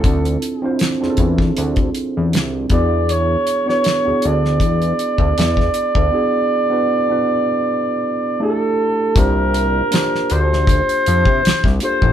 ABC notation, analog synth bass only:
X:1
M:4/4
L:1/16
Q:"Swing 16ths" 1/4=79
K:Cmix
V:1 name="Analog synth bass" clef=bass
D,,2 z3 E,, E,,2 D,,2 z E,, C,,2 E,,2- | E,,2 z3 D,, D,,2 E,,2 z D,, E,,2 z D,, | z16 | C,,4 z2 D,,3 z F,, C, C,, C,, z A,,, |]